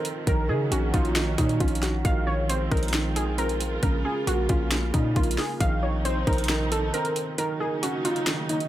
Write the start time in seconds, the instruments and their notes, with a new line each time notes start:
Already playing: felt piano D#3 C4 D#4, string section D#3 F3 C4 F4
0.05 closed hi-hat
0.27 808-style bass A#1, felt piano D#3, string section F#3 A#3 C#4, synth pluck A#4, kick, closed hi-hat
0.49 808-style bass C#3, felt piano D#3, synth pluck G#4
0.72 808-style bass A#1, felt piano C#4, synth pluck F#4, closed hi-hat
0.94 808-style bass A#1, felt piano D#4, synth pluck F4, kick, closed hi-hat
1.05 closed hi-hat
1.15 felt piano D#3, finger snap, snare, closed hi-hat
1.38 808-style bass A#2, felt piano D#3, synth pluck D#4, kick, closed hi-hat
1.49 closed hi-hat
1.60 808-style bass A#1, felt piano C#4, synth pluck F4, kick, closed hi-hat
1.68 closed hi-hat
1.75 closed hi-hat
1.83 synth pluck F#4, snare, closed hi-hat
2.05 808-style bass A#1, felt piano D#3, string section G#3 C4 F4, synth pluck F5, kick, closed hi-hat
2.27 felt piano D#3, synth pluck C#5
2.49 felt piano C4, synth pluck C5, closed hi-hat
2.71 808-style bass A#1, felt piano D#4, synth pluck A#4, kick, closed hi-hat
2.77 closed hi-hat
2.83 closed hi-hat
2.88 closed hi-hat
2.93 felt piano D#3, finger snap, snare, closed hi-hat
3.16 felt piano D#3, synth pluck G#4, closed hi-hat
3.38 felt piano C4, synth pluck A#4, closed hi-hat
3.49 closed hi-hat
3.60 closed hi-hat
3.83 808-style bass A#1, string section C#3 A#3, felt piano C#3, synth pluck A#4, kick, closed hi-hat
4.05 felt piano C#3, synth pluck G#4
4.27 808-style bass A#1, felt piano A#3, synth pluck F#4, closed hi-hat
4.49 808-style bass A#1, felt piano C#4, synth pluck F4, kick, closed hi-hat
4.71 felt piano C#3, finger snap, snare, closed hi-hat
4.94 808-style bass A#2, felt piano C#3, synth pluck D#4, kick, closed hi-hat
5.16 808-style bass A#1, felt piano A#3, synth pluck F4, kick, closed hi-hat
5.23 closed hi-hat
5.31 closed hi-hat
5.38 synth pluck G#4, snare, open hi-hat
5.61 808-style bass A#1, string section C3 F3 C4 D#4, felt piano D#3, synth pluck F5, kick, closed hi-hat
5.83 felt piano D#3, synth pluck C#5
6.05 felt piano C4, synth pluck C5, closed hi-hat
6.27 808-style bass A#1, felt piano D#4, synth pluck A#4, kick, closed hi-hat
6.33 closed hi-hat
6.38 closed hi-hat
6.44 closed hi-hat
6.49 felt piano D#3, finger snap, snare, closed hi-hat
6.72 felt piano D#3, synth pluck A4, closed hi-hat
6.94 felt piano C4, synth pluck A#4, closed hi-hat
7.05 closed hi-hat
7.16 closed hi-hat
7.38 string section C#3 F#3 A#3 D#4, felt piano D#3, synth pluck A#4, closed hi-hat
7.60 felt piano D#3, synth pluck G#4
7.83 felt piano C#4, synth pluck F#4, closed hi-hat
8.05 felt piano D#4, synth pluck F4, closed hi-hat
8.16 closed hi-hat
8.26 felt piano D#3, finger snap, snare, closed hi-hat
8.49 felt piano D#3, synth pluck D#4, closed hi-hat
8.60 closed hi-hat